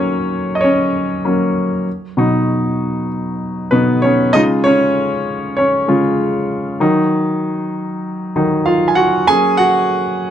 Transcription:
Already playing: F#3 A#3 C#4 C#5
0.55 D#5
0.61 C#4 C#5
1.25 F#3 A#3 C#4
2.17 B2 F#3 D#4
3.71 B2 F#3 B3 D#4 B4
4.02 C#4 C#5
4.33 C#3 G#3 D#4 F4 D#5
4.64 C#4 C#5
5.57 C#4 C#5
5.88 C#3 G#3 F4
6.80 D#3 F#3 D#4
8.36 D#3 F#3 D#4
8.66 F4 F5
8.88 G#5
8.95 F#4 F#5
9.27 F#3 A#3 C#4 G#4 G#5
9.57 F#4 F#5

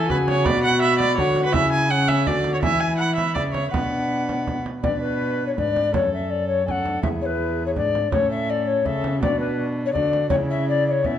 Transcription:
Already playing: E3 E4 G#5
0.09 C#3 F#4 B4, frame drum
0.28 C#5, frame drum
0.44 B2 D5 B5, frame drum
0.64 F#5
0.80 E5 B5
0.99 D5, frame drum
1.18 D3 F#4 C#5 F#5, frame drum
1.36 frame drum
1.45 B4
1.53 C#3 E4 E5 G#5, frame drum
1.73 G#5
1.90 C#4 F#5
2.08 E5, frame drum
2.27 D3 F#4 D5, frame drum
2.44 frame drum
2.54 C#5
2.62 E3 E4 E5 G#5, frame drum
2.80 G#5
2.98 F#5 B5
3.16 E5, frame drum
3.35 C#3 D5 E5, frame drum
3.53 C#5, frame drum
3.71 B2 D4 B4 F#5, frame drum
4.29 frame drum
4.47 frame drum
4.66 frame drum
4.82 B2 D4 B4 D5, frame drum
5.00 B4
5.46 C#5
5.56 G#2 D4 B4 D5, frame drum
5.76 frame drum
5.93 F#2 C#4 A4 C#5, frame drum
6.13 E5
6.30 D5
6.47 C#5
6.66 C#4 A4 F#5 G#5, frame drum
6.85 D4, frame drum
7.02 E2 E4 G#4 E5, frame drum
7.21 C#5
7.25 B4
7.66 C#5
7.76 G#2 D4 D5, frame drum
7.95 frame drum
8.11 A2 C#4 A4 C#5, frame drum
8.30 E5
8.49 D5
8.67 C#5
8.84 C#3 C#4 A4 E5, frame drum
9.04 frame drum
9.21 B2 D4 F#4 D5, frame drum
9.39 B4
9.85 C#5
9.92 D3 D4 F#4 D5, frame drum
10.13 frame drum
10.29 C#3 C#4 E4 C#5, frame drum
10.50 E5
10.69 D5
10.87 C#5 D5
11.02 B2 C#4 E4 E5, frame drum

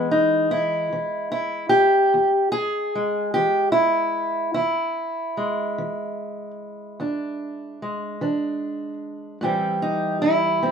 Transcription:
Already playing: E2 E3 G#3 B3
0.11 D#4
0.51 E4
0.93 E3
1.32 E4
1.69 G4
2.14 E2
2.52 G#4
2.95 G#3
3.34 E3 G4
3.72 E4
4.54 E2 E4
5.37 G#3
5.78 E3
7.00 E2 D4
7.82 G#3
8.21 E3 D4
9.41 A2 E3 G3 C4 G4
9.82 D#4
10.22 E4
10.63 E3 C4

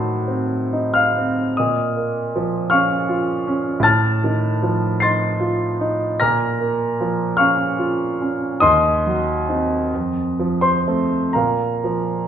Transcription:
Already playing: A2 D#3 F#3 C5 A5 C6
0.28 C4
0.73 D#4
0.94 F5 F6
1.18 C4
1.57 A#2 D#5 D#6
1.96 A#3
2.36 F3
2.70 C#4 F5 C#6 F6
3.09 F4
3.47 C#4
3.80 A2 A6
3.84 A5 F6
4.24 D#3
4.63 F3
5.00 D#4 C6 A6 C7
5.41 F4
5.81 D#4
6.20 A#2 A#5 F6 A#6
6.61 A#3
7.01 F3
7.37 C#4 F5 C#6 F6
7.79 F4
8.22 C#4
8.60 D#2 D#5 C6 D#6
9.06 F#3
9.49 C4 D#4
9.94 F2
10.40 F3
10.61 C5 C6
10.87 A3 C4
11.33 A#2 A#4 F5 A#5
11.84 F3

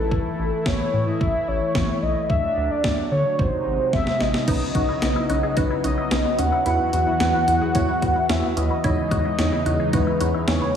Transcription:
Already playing: A1 E3 A3 E4 A4
0.11 A4, kick
0.39 A1
0.66 A1 C#5, kick, snare
0.93 A2
1.07 D#5
1.21 A1 E5, kick
1.48 A1 C#5
1.75 A1, kick, snare
2.02 B1 D#5
2.29 D2 F#3 D4 E5, kick
2.57 D2
2.71 D5
2.84 D2, kick, snare
3.11 D3 C#5
3.39 G#1 C3 G#3 D#4 C5, kick
3.66 G#1
3.93 G#1 E5, kick, snare
4.07 snare
4.20 A1 D#5, snare
4.34 snare
4.48 B1 C#3 F#3 B3 C#4 D#4 B4 D#5, kick, closed hi-hat, crash
4.75 B1 C#4 D#4 F#4 B4, kick, closed hi-hat
4.89 E4
5.02 B1 C#4 D#4 B4, snare, closed hi-hat
5.16 E4
5.29 B1 C#4 D#4 F#4 B4, closed hi-hat
5.43 G#4
5.57 B1 C#4 D#4 F#4 B4, kick, closed hi-hat
5.71 E4
5.84 B1 C#4 D#4 F#4 B4 D#5, closed hi-hat
5.98 E4
6.11 B1 C#4 D#4 B4, snare, closed hi-hat
6.25 B3
6.39 D#2 C#4 D#4 B4 F#5, closed hi-hat
6.52 E4
6.66 E2 E3 E4 F#4 B4 F#5, closed hi-hat
6.93 E2 E4 F#4 B4, closed hi-hat
7.07 E4
7.20 E2 E4 F#4 B4, snare, closed hi-hat
7.34 E4
7.48 E2 E4 F#4 B4, closed hi-hat
7.61 G#4
7.75 E2 E4 F#4 C#5, kick, closed hi-hat
7.89 E4
8.02 E2 E4 F#4 B4, kick, closed hi-hat
8.16 E4
8.29 E2 C#4 E4 F#4 B4 E5, snare, closed hi-hat
8.43 B3
8.57 D#2 C#4 E4 F#4 B4 D#5, closed hi-hat
8.70 E4
8.84 E2 C#3 E3 G#3 D#4 E4 C#5 D#5, kick, closed hi-hat
9.11 E2 D#4 E4 F#4 C#5, kick, closed hi-hat
9.25 E4
9.39 E2 D#4 E4 C#5, snare, closed hi-hat
9.52 E4
9.66 E2 D#4 E4 F#4 C#5, closed hi-hat
9.80 G#4
9.93 E2 D#4 E4 F#4 B4, kick, closed hi-hat
10.07 E4
10.21 E2 D#4 E4 F#4 C#5, closed hi-hat
10.34 E4
10.48 E2 C#4 D#4 E4 B4 C#5, snare, closed hi-hat
10.61 B3

